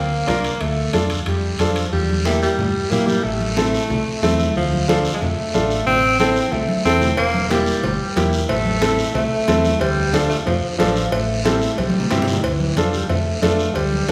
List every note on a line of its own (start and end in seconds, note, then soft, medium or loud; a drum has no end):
0.00 0.22 D2 medium
0.00 0.62 A#3 medium
0.27 0.54 C2 medium
0.27 0.51 D4 medium
0.27 0.51 F4 medium
0.27 0.51 A#4 medium
0.27 high conga medium
0.27 high timbale medium
0.27 low timbale medium
0.27 short guiro medium
0.44 high timbale medium
0.44 short guiro medium
0.61 0.87 D2 medium
0.61 1.00 A3 medium
0.61 high timbale medium
0.61 long guiro medium
0.93 1.20 F2 medium
0.93 1.17 D4 medium
0.93 1.17 F4 medium
0.93 1.17 A4 medium
0.93 high conga medium
0.93 high timbale medium
0.93 short guiro medium
1.10 high timbale medium
1.10 short guiro medium
1.26 1.53 F2 medium
1.26 1.61 G3 medium
1.26 high timbale medium
1.26 long guiro medium
1.59 1.86 F2 medium
1.59 1.92 F3 medium
1.59 1.83 D4 medium
1.59 1.83 F4 medium
1.59 1.83 A4 medium
1.59 high conga medium
1.59 high timbale medium
1.59 short guiro medium
1.76 high timbale medium
1.76 short guiro medium
1.92 2.46 E2 loud
1.92 2.27 G3 medium
1.92 high conga soft
1.92 long guiro medium
2.10 high conga medium
2.25 2.42 A3 loud
2.25 2.48 A#3 medium
2.25 2.49 E4 medium
2.25 2.49 G4 medium
2.25 high conga loud
2.25 short guiro medium
2.42 2.92 G3 medium
2.42 short guiro medium
2.59 2.72 G2 loud
2.59 high conga soft
2.59 low conga medium
2.59 long guiro medium
2.91 3.18 A#2 medium
2.91 3.09 A#3 medium
2.91 3.14 A#3 medium
2.91 3.15 E4 medium
2.91 3.15 G4 medium
2.91 high conga medium
2.91 short guiro medium
3.07 3.26 G3 medium
3.07 high conga medium
3.07 short guiro medium
3.24 3.77 A1 medium
3.24 4.22 A3 loud
3.24 high conga soft
3.24 long guiro medium
3.41 high conga medium
3.57 3.80 C4 medium
3.57 3.80 E4 medium
3.57 3.80 A4 loud
3.57 high conga loud
3.57 short guiro medium
3.74 short guiro medium
3.90 4.03 C2 loud
3.90 high conga soft
3.90 low conga medium
3.90 long guiro medium
4.22 4.49 E2 loud
4.22 4.53 A3 loud
4.22 4.46 C4 medium
4.22 4.46 E4 medium
4.22 4.46 A4 medium
4.22 high conga medium
4.22 short guiro medium
4.39 high conga medium
4.39 short guiro medium
4.56 5.08 D2 medium
4.56 4.86 F3 loud
4.56 high conga soft
4.56 long guiro medium
4.73 high conga medium
4.88 5.12 F3 medium
4.88 5.11 D4 medium
4.88 5.11 F4 medium
4.88 5.12 A4 medium
4.88 high conga loud
4.88 short guiro medium
5.05 short guiro medium
5.14 5.23 G#3 medium
5.21 5.34 F2 loud
5.21 5.86 A3 loud
5.21 high conga soft
5.21 low conga medium
5.21 long guiro medium
5.54 5.80 A1 loud
5.54 5.77 D4 medium
5.54 5.77 F4 medium
5.54 5.78 A4 medium
5.54 high conga medium
5.54 short guiro medium
5.70 short guiro medium
5.86 6.39 A1 medium
5.86 6.17 C4 loud
5.86 high conga soft
5.86 low conga medium
5.86 long guiro medium
6.20 6.43 C4 medium
6.20 6.53 C4 loud
6.20 6.43 E4 medium
6.20 6.43 A4 medium
6.20 high conga loud
6.20 short guiro medium
6.36 short guiro medium
6.52 6.66 C2 loud
6.52 6.84 A3 medium
6.52 high conga soft
6.52 low conga medium
6.52 long guiro medium
6.69 high conga medium
6.85 7.11 E2 medium
6.85 7.16 C4 loud
6.85 7.08 C4 medium
6.85 7.08 E4 medium
6.85 7.09 A4 medium
6.85 short guiro medium
7.02 low conga medium
7.02 short guiro medium
7.17 7.71 E1 medium
7.17 7.52 A#3 loud
7.17 cowbell loud
7.17 high conga soft
7.17 long guiro medium
7.34 high conga medium
7.50 8.22 G3 medium
7.50 7.74 A#3 medium
7.50 7.74 E4 medium
7.50 7.74 G4 medium
7.50 cowbell medium
7.50 high conga loud
7.50 short guiro medium
7.66 short guiro medium
7.83 7.97 G1 loud
7.83 cowbell medium
7.83 high conga soft
7.83 low conga medium
7.83 long guiro medium
8.16 8.43 E2 loud
8.16 8.39 A#3 medium
8.16 8.40 E4 medium
8.16 8.40 G4 medium
8.16 cowbell medium
8.16 high conga medium
8.16 low timbale medium
8.16 short guiro medium
8.33 short guiro medium
8.49 9.02 A1 loud
8.49 9.11 A3 loud
8.49 cowbell loud
8.49 high conga soft
8.49 low conga medium
8.49 long guiro medium
8.66 high conga medium
8.81 9.05 C4 medium
8.81 9.05 E4 medium
8.81 9.05 A4 medium
8.81 cowbell medium
8.81 high conga loud
8.81 short guiro medium
8.99 short guiro medium
9.15 9.28 C2 loud
9.15 9.82 A3 loud
9.15 cowbell medium
9.15 high conga soft
9.15 low conga medium
9.15 long guiro medium
9.48 9.74 E2 loud
9.48 9.71 C4 medium
9.48 9.71 E4 medium
9.48 9.71 A4 medium
9.48 cowbell medium
9.48 high conga medium
9.48 low timbale medium
9.48 short guiro medium
9.65 high conga medium
9.65 short guiro medium
9.81 10.34 D2 loud
9.81 10.15 G3 loud
9.81 cowbell loud
9.81 high conga soft
9.81 long guiro medium
10.13 10.29 F3 medium
10.13 10.36 D4 medium
10.13 10.37 F4 medium
10.13 10.37 A4 medium
10.13 cowbell medium
10.13 high conga loud
10.13 short guiro medium
10.29 10.37 A3 medium
10.29 short guiro medium
10.46 10.60 F2 loud
10.46 10.77 F3 medium
10.46 cowbell medium
10.46 high conga soft
10.46 low conga medium
10.46 long guiro medium
10.78 11.06 A1 medium
10.78 11.13 F3 medium
10.78 11.02 D4 medium
10.78 11.02 F4 medium
10.78 11.03 A4 loud
10.78 cowbell medium
10.78 high conga medium
10.78 low timbale medium
10.78 short guiro medium
10.96 short guiro medium
11.11 11.65 A1 medium
11.11 11.44 A3 loud
11.11 cowbell loud
11.11 high conga soft
11.11 long guiro medium
11.45 11.62 G3 medium
11.45 11.68 C4 medium
11.45 11.68 E4 medium
11.45 11.68 A4 medium
11.45 cowbell medium
11.45 high conga loud
11.45 short guiro medium
11.61 11.80 A3 medium
11.61 short guiro medium
11.78 11.91 C2 loud
11.78 12.28 G3 medium
11.78 cowbell medium
11.78 high conga medium
11.78 long guiro medium
11.90 high conga loud
12.00 low conga medium
12.10 12.38 G2 medium
12.10 12.34 C4 medium
12.10 12.34 E4 medium
12.10 12.34 G4 medium
12.10 cowbell medium
12.10 low conga medium
12.10 low timbale medium
12.10 short guiro medium
12.22 low conga medium
12.28 short guiro medium
12.33 low conga medium
12.37 12.45 D#3 medium
12.44 12.71 D2 medium
12.44 12.79 E3 medium
12.44 cowbell loud
12.44 long guiro medium
12.60 high conga medium
12.77 13.03 F2 medium
12.77 12.94 F3 medium
12.77 13.00 D4 medium
12.77 13.00 F4 medium
12.77 13.00 A4 medium
12.77 cowbell medium
12.77 high conga medium
12.77 short guiro medium
12.93 13.08 G3 medium
12.93 short guiro medium
13.09 13.36 F2 medium
13.09 13.40 A3 medium
13.09 cowbell medium
13.09 low conga medium
13.09 long guiro medium
13.42 13.69 F2 medium
13.42 13.76 A3 medium
13.42 13.65 D4 medium
13.42 13.66 F4 medium
13.42 13.66 A4 medium
13.42 cowbell medium
13.42 high conga medium
13.42 low timbale medium
13.42 short guiro medium
13.59 short guiro medium
13.74 14.02 D2 medium
13.74 14.09 G3 medium
13.74 cowbell medium
13.74 long guiro medium
13.92 high conga medium
14.08 14.12 F3 medium
14.08 14.12 D4 medium
14.08 14.12 F4 medium
14.08 high conga medium
14.08 short guiro medium